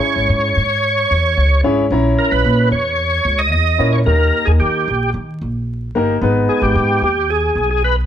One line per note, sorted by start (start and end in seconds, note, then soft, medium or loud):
0.00 0.53 C#4 medium
0.00 0.56 E4 medium
0.00 0.53 G#4 medium
0.00 0.53 C#5 medium
0.00 1.61 C#5 loud
0.16 0.27 G#1 medium
0.29 0.52 G#2 medium
0.57 1.03 G#2 medium
1.11 1.34 E2 medium
1.37 1.60 C#2 medium
1.63 1.87 G#1 medium
1.63 1.83 C#4 medium
1.63 1.84 E4 medium
1.63 1.84 G#4 medium
1.63 1.84 C#5 medium
1.90 2.14 A#1 medium
1.90 2.69 C#4 medium
1.90 2.69 E4 medium
1.90 2.70 C#5 medium
1.90 2.69 A#5 medium
2.19 2.32 A#4 medium
2.31 2.43 A#1 medium
2.31 2.69 B4 medium
2.44 2.68 A#2 medium
2.71 3.17 E2 medium
2.71 3.41 C#5 medium
3.25 3.52 C#2 medium
3.39 3.51 D#5 medium
3.52 3.75 E2 medium
3.52 3.94 D#5 medium
3.78 4.02 A#2 medium
3.78 3.99 C#4 medium
3.78 3.99 E4 medium
3.78 3.99 A#4 medium
3.78 3.99 C#5 medium
3.93 3.99 C#5 medium
4.06 4.29 D#2 medium
4.06 4.84 A#3 medium
4.06 4.84 D#4 medium
4.06 4.84 G4 medium
4.06 4.48 A#4 medium
4.06 4.85 A#4 medium
4.45 4.58 D#2 medium
4.45 4.52 G#4 medium
4.60 4.83 D#3 medium
4.60 5.10 G4 medium
4.88 5.10 A#1 medium
5.14 5.37 D#3 medium
5.41 5.87 A#1 medium
5.95 6.18 G1 medium
5.95 6.14 A#3 medium
5.95 6.15 D#4 medium
5.95 6.15 G4 medium
5.95 6.15 A#4 medium
6.21 6.45 G#1 medium
6.21 7.00 G#3 medium
6.21 6.99 B3 medium
6.21 7.00 D#4 medium
6.21 7.00 B4 medium
6.49 6.63 G#4 medium
6.62 6.73 G#1 medium
6.62 7.02 G4 medium
6.75 6.98 G#2 medium
7.02 7.48 D#2 medium
7.02 7.31 G4 medium
7.30 7.69 G#4 medium
7.55 8.02 B1 medium
7.71 7.83 G#4 medium
7.84 7.96 B4 medium